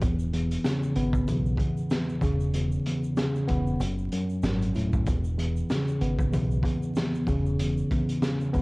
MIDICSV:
0, 0, Header, 1, 4, 480
1, 0, Start_track
1, 0, Key_signature, 4, "major"
1, 0, Tempo, 631579
1, 9, Time_signature, 4, 2, 24, 8
1, 6550, End_track
2, 0, Start_track
2, 0, Title_t, "Tine electric piano"
2, 0, Program_c, 0, 4
2, 0, Control_c, 0, 64, 127
2, 15, Note_on_c, 0, 40, 90
2, 17, Control_c, 0, 64, 0
2, 144, Control_c, 0, 64, 127
2, 237, Note_off_c, 0, 40, 0
2, 246, Note_on_c, 0, 40, 80
2, 495, Note_on_c, 0, 49, 91
2, 728, Note_on_c, 0, 59, 85
2, 957, Note_off_c, 0, 40, 0
2, 966, Note_on_c, 0, 40, 88
2, 1204, Note_off_c, 0, 40, 0
2, 1214, Note_on_c, 0, 40, 72
2, 1448, Note_off_c, 0, 40, 0
2, 1457, Note_on_c, 0, 40, 82
2, 1684, Note_off_c, 0, 49, 0
2, 1689, Note_off_c, 0, 59, 0
2, 1693, Note_off_c, 0, 40, 0
2, 1693, Note_on_c, 0, 49, 84
2, 1700, Control_c, 0, 64, 0
2, 1833, Control_c, 0, 64, 127
2, 1932, Note_on_c, 0, 40, 94
2, 2165, Note_off_c, 0, 40, 0
2, 2174, Note_on_c, 0, 40, 75
2, 2403, Note_off_c, 0, 49, 0
2, 2412, Note_on_c, 0, 49, 87
2, 2641, Note_on_c, 0, 59, 89
2, 2885, Note_off_c, 0, 59, 0
2, 2886, Note_on_c, 0, 42, 86
2, 2890, Note_off_c, 0, 49, 0
2, 2891, Note_off_c, 0, 40, 0
2, 2900, Control_c, 0, 64, 0
2, 3035, Control_c, 0, 64, 127
2, 3121, Note_off_c, 0, 42, 0
2, 3130, Note_on_c, 0, 42, 80
2, 3366, Note_off_c, 0, 42, 0
2, 3375, Note_on_c, 0, 42, 82
2, 3610, Note_on_c, 0, 45, 82
2, 3850, Note_off_c, 0, 45, 0
2, 3852, Note_off_c, 0, 42, 0
2, 3853, Note_on_c, 0, 40, 90
2, 3860, Control_c, 0, 64, 0
2, 3993, Control_c, 0, 64, 127
2, 4075, Note_off_c, 0, 40, 0
2, 4084, Note_on_c, 0, 40, 79
2, 4335, Note_on_c, 0, 49, 85
2, 4568, Note_on_c, 0, 59, 87
2, 4798, Note_off_c, 0, 40, 0
2, 4807, Note_on_c, 0, 40, 91
2, 5045, Note_off_c, 0, 40, 0
2, 5054, Note_on_c, 0, 40, 75
2, 5289, Note_off_c, 0, 40, 0
2, 5298, Note_on_c, 0, 40, 82
2, 5525, Note_off_c, 0, 49, 0
2, 5529, Note_off_c, 0, 59, 0
2, 5533, Note_off_c, 0, 40, 0
2, 5535, Note_on_c, 0, 49, 83
2, 5540, Control_c, 0, 64, 0
2, 5665, Control_c, 0, 64, 127
2, 5774, Note_on_c, 0, 40, 91
2, 6007, Note_off_c, 0, 40, 0
2, 6016, Note_on_c, 0, 40, 74
2, 6246, Note_off_c, 0, 49, 0
2, 6255, Note_on_c, 0, 49, 84
2, 6484, Note_on_c, 0, 59, 88
2, 6550, Note_off_c, 0, 40, 0
2, 6550, Note_off_c, 0, 49, 0
2, 6550, Note_off_c, 0, 59, 0
2, 6550, End_track
3, 0, Start_track
3, 0, Title_t, "Fingered electric bass"
3, 0, Program_c, 1, 33
3, 10, Note_on_c, 1, 28, 107
3, 427, Note_off_c, 1, 28, 0
3, 730, Note_on_c, 1, 32, 82
3, 938, Note_off_c, 1, 32, 0
3, 973, Note_on_c, 1, 35, 96
3, 1180, Note_off_c, 1, 35, 0
3, 1683, Note_on_c, 1, 28, 97
3, 2103, Note_off_c, 1, 28, 0
3, 2652, Note_on_c, 1, 28, 84
3, 2859, Note_off_c, 1, 28, 0
3, 2887, Note_on_c, 1, 30, 102
3, 3097, Note_off_c, 1, 30, 0
3, 3368, Note_on_c, 1, 32, 94
3, 3609, Note_off_c, 1, 32, 0
3, 3609, Note_on_c, 1, 27, 85
3, 3818, Note_off_c, 1, 27, 0
3, 3851, Note_on_c, 1, 28, 105
3, 4267, Note_off_c, 1, 28, 0
3, 4568, Note_on_c, 1, 32, 87
3, 4777, Note_off_c, 1, 32, 0
3, 4814, Note_on_c, 1, 35, 96
3, 5021, Note_off_c, 1, 35, 0
3, 5523, Note_on_c, 1, 28, 98
3, 5943, Note_off_c, 1, 28, 0
3, 6493, Note_on_c, 1, 28, 87
3, 6550, Note_off_c, 1, 28, 0
3, 6550, End_track
4, 0, Start_track
4, 0, Title_t, "Drums"
4, 10, Note_on_c, 9, 42, 86
4, 10, Note_on_c, 9, 82, 66
4, 11, Note_on_c, 9, 36, 116
4, 86, Note_off_c, 9, 42, 0
4, 86, Note_off_c, 9, 82, 0
4, 87, Note_off_c, 9, 36, 0
4, 144, Note_on_c, 9, 82, 58
4, 220, Note_off_c, 9, 82, 0
4, 253, Note_on_c, 9, 42, 75
4, 329, Note_off_c, 9, 42, 0
4, 388, Note_on_c, 9, 42, 47
4, 389, Note_on_c, 9, 82, 55
4, 464, Note_off_c, 9, 42, 0
4, 465, Note_off_c, 9, 82, 0
4, 489, Note_on_c, 9, 40, 88
4, 490, Note_on_c, 9, 38, 113
4, 492, Note_on_c, 9, 82, 70
4, 502, Note_on_c, 9, 42, 99
4, 565, Note_off_c, 9, 40, 0
4, 566, Note_off_c, 9, 38, 0
4, 568, Note_off_c, 9, 82, 0
4, 578, Note_off_c, 9, 42, 0
4, 630, Note_on_c, 9, 82, 50
4, 706, Note_off_c, 9, 82, 0
4, 727, Note_on_c, 9, 42, 75
4, 803, Note_off_c, 9, 42, 0
4, 860, Note_on_c, 9, 36, 106
4, 870, Note_on_c, 9, 82, 51
4, 936, Note_off_c, 9, 36, 0
4, 946, Note_off_c, 9, 82, 0
4, 971, Note_on_c, 9, 82, 80
4, 973, Note_on_c, 9, 36, 88
4, 973, Note_on_c, 9, 42, 73
4, 1047, Note_off_c, 9, 82, 0
4, 1049, Note_off_c, 9, 36, 0
4, 1049, Note_off_c, 9, 42, 0
4, 1107, Note_on_c, 9, 82, 47
4, 1183, Note_off_c, 9, 82, 0
4, 1196, Note_on_c, 9, 36, 93
4, 1211, Note_on_c, 9, 42, 68
4, 1272, Note_off_c, 9, 36, 0
4, 1287, Note_off_c, 9, 42, 0
4, 1345, Note_on_c, 9, 82, 53
4, 1421, Note_off_c, 9, 82, 0
4, 1444, Note_on_c, 9, 82, 72
4, 1452, Note_on_c, 9, 40, 93
4, 1453, Note_on_c, 9, 38, 114
4, 1453, Note_on_c, 9, 42, 84
4, 1520, Note_off_c, 9, 82, 0
4, 1528, Note_off_c, 9, 40, 0
4, 1529, Note_off_c, 9, 38, 0
4, 1529, Note_off_c, 9, 42, 0
4, 1590, Note_on_c, 9, 82, 49
4, 1666, Note_off_c, 9, 82, 0
4, 1682, Note_on_c, 9, 36, 90
4, 1685, Note_on_c, 9, 82, 54
4, 1695, Note_on_c, 9, 42, 79
4, 1758, Note_off_c, 9, 36, 0
4, 1761, Note_off_c, 9, 82, 0
4, 1771, Note_off_c, 9, 42, 0
4, 1827, Note_on_c, 9, 82, 47
4, 1903, Note_off_c, 9, 82, 0
4, 1929, Note_on_c, 9, 42, 86
4, 1931, Note_on_c, 9, 82, 68
4, 2005, Note_off_c, 9, 42, 0
4, 2007, Note_off_c, 9, 82, 0
4, 2064, Note_on_c, 9, 82, 58
4, 2140, Note_off_c, 9, 82, 0
4, 2174, Note_on_c, 9, 42, 71
4, 2250, Note_off_c, 9, 42, 0
4, 2308, Note_on_c, 9, 82, 58
4, 2384, Note_off_c, 9, 82, 0
4, 2408, Note_on_c, 9, 82, 67
4, 2410, Note_on_c, 9, 40, 89
4, 2412, Note_on_c, 9, 38, 113
4, 2424, Note_on_c, 9, 42, 97
4, 2484, Note_off_c, 9, 82, 0
4, 2486, Note_off_c, 9, 40, 0
4, 2488, Note_off_c, 9, 38, 0
4, 2500, Note_off_c, 9, 42, 0
4, 2547, Note_on_c, 9, 82, 50
4, 2623, Note_off_c, 9, 82, 0
4, 2648, Note_on_c, 9, 42, 78
4, 2652, Note_on_c, 9, 36, 91
4, 2724, Note_off_c, 9, 42, 0
4, 2728, Note_off_c, 9, 36, 0
4, 2788, Note_on_c, 9, 82, 51
4, 2864, Note_off_c, 9, 82, 0
4, 2889, Note_on_c, 9, 82, 80
4, 2893, Note_on_c, 9, 42, 70
4, 2965, Note_off_c, 9, 82, 0
4, 2969, Note_off_c, 9, 42, 0
4, 3026, Note_on_c, 9, 82, 46
4, 3102, Note_off_c, 9, 82, 0
4, 3131, Note_on_c, 9, 42, 68
4, 3207, Note_off_c, 9, 42, 0
4, 3264, Note_on_c, 9, 82, 54
4, 3340, Note_off_c, 9, 82, 0
4, 3365, Note_on_c, 9, 82, 75
4, 3372, Note_on_c, 9, 40, 92
4, 3374, Note_on_c, 9, 38, 116
4, 3374, Note_on_c, 9, 42, 82
4, 3441, Note_off_c, 9, 82, 0
4, 3448, Note_off_c, 9, 40, 0
4, 3450, Note_off_c, 9, 38, 0
4, 3450, Note_off_c, 9, 42, 0
4, 3510, Note_on_c, 9, 82, 52
4, 3514, Note_on_c, 9, 42, 58
4, 3586, Note_off_c, 9, 82, 0
4, 3590, Note_off_c, 9, 42, 0
4, 3606, Note_on_c, 9, 82, 53
4, 3616, Note_on_c, 9, 42, 81
4, 3682, Note_off_c, 9, 82, 0
4, 3692, Note_off_c, 9, 42, 0
4, 3745, Note_on_c, 9, 82, 48
4, 3749, Note_on_c, 9, 36, 89
4, 3821, Note_off_c, 9, 82, 0
4, 3825, Note_off_c, 9, 36, 0
4, 3849, Note_on_c, 9, 42, 86
4, 3850, Note_on_c, 9, 82, 67
4, 3851, Note_on_c, 9, 36, 114
4, 3925, Note_off_c, 9, 42, 0
4, 3926, Note_off_c, 9, 82, 0
4, 3927, Note_off_c, 9, 36, 0
4, 3982, Note_on_c, 9, 82, 58
4, 4058, Note_off_c, 9, 82, 0
4, 4094, Note_on_c, 9, 42, 74
4, 4170, Note_off_c, 9, 42, 0
4, 4227, Note_on_c, 9, 82, 57
4, 4303, Note_off_c, 9, 82, 0
4, 4329, Note_on_c, 9, 82, 68
4, 4330, Note_on_c, 9, 40, 90
4, 4332, Note_on_c, 9, 38, 110
4, 4344, Note_on_c, 9, 42, 99
4, 4405, Note_off_c, 9, 82, 0
4, 4406, Note_off_c, 9, 40, 0
4, 4408, Note_off_c, 9, 38, 0
4, 4420, Note_off_c, 9, 42, 0
4, 4467, Note_on_c, 9, 82, 50
4, 4543, Note_off_c, 9, 82, 0
4, 4568, Note_on_c, 9, 42, 78
4, 4644, Note_off_c, 9, 42, 0
4, 4701, Note_on_c, 9, 36, 107
4, 4708, Note_on_c, 9, 82, 52
4, 4777, Note_off_c, 9, 36, 0
4, 4784, Note_off_c, 9, 82, 0
4, 4809, Note_on_c, 9, 82, 76
4, 4814, Note_on_c, 9, 36, 90
4, 4816, Note_on_c, 9, 42, 67
4, 4885, Note_off_c, 9, 82, 0
4, 4890, Note_off_c, 9, 36, 0
4, 4892, Note_off_c, 9, 42, 0
4, 4947, Note_on_c, 9, 82, 47
4, 5023, Note_off_c, 9, 82, 0
4, 5037, Note_on_c, 9, 36, 90
4, 5053, Note_on_c, 9, 42, 70
4, 5113, Note_off_c, 9, 36, 0
4, 5129, Note_off_c, 9, 42, 0
4, 5186, Note_on_c, 9, 82, 53
4, 5262, Note_off_c, 9, 82, 0
4, 5284, Note_on_c, 9, 82, 76
4, 5294, Note_on_c, 9, 40, 93
4, 5296, Note_on_c, 9, 38, 118
4, 5296, Note_on_c, 9, 42, 81
4, 5360, Note_off_c, 9, 82, 0
4, 5370, Note_off_c, 9, 40, 0
4, 5372, Note_off_c, 9, 38, 0
4, 5372, Note_off_c, 9, 42, 0
4, 5431, Note_on_c, 9, 82, 51
4, 5507, Note_off_c, 9, 82, 0
4, 5523, Note_on_c, 9, 36, 91
4, 5526, Note_on_c, 9, 82, 53
4, 5536, Note_on_c, 9, 42, 82
4, 5599, Note_off_c, 9, 36, 0
4, 5602, Note_off_c, 9, 82, 0
4, 5612, Note_off_c, 9, 42, 0
4, 5668, Note_on_c, 9, 82, 47
4, 5744, Note_off_c, 9, 82, 0
4, 5769, Note_on_c, 9, 42, 85
4, 5771, Note_on_c, 9, 82, 67
4, 5845, Note_off_c, 9, 42, 0
4, 5847, Note_off_c, 9, 82, 0
4, 5906, Note_on_c, 9, 82, 59
4, 5982, Note_off_c, 9, 82, 0
4, 6011, Note_on_c, 9, 36, 97
4, 6012, Note_on_c, 9, 42, 73
4, 6087, Note_off_c, 9, 36, 0
4, 6088, Note_off_c, 9, 42, 0
4, 6148, Note_on_c, 9, 42, 49
4, 6151, Note_on_c, 9, 82, 57
4, 6224, Note_off_c, 9, 42, 0
4, 6227, Note_off_c, 9, 82, 0
4, 6249, Note_on_c, 9, 40, 89
4, 6251, Note_on_c, 9, 38, 111
4, 6252, Note_on_c, 9, 82, 70
4, 6262, Note_on_c, 9, 42, 98
4, 6325, Note_off_c, 9, 40, 0
4, 6327, Note_off_c, 9, 38, 0
4, 6328, Note_off_c, 9, 82, 0
4, 6338, Note_off_c, 9, 42, 0
4, 6391, Note_on_c, 9, 82, 52
4, 6467, Note_off_c, 9, 82, 0
4, 6488, Note_on_c, 9, 42, 75
4, 6492, Note_on_c, 9, 82, 55
4, 6493, Note_on_c, 9, 36, 89
4, 6550, Note_off_c, 9, 36, 0
4, 6550, Note_off_c, 9, 42, 0
4, 6550, Note_off_c, 9, 82, 0
4, 6550, End_track
0, 0, End_of_file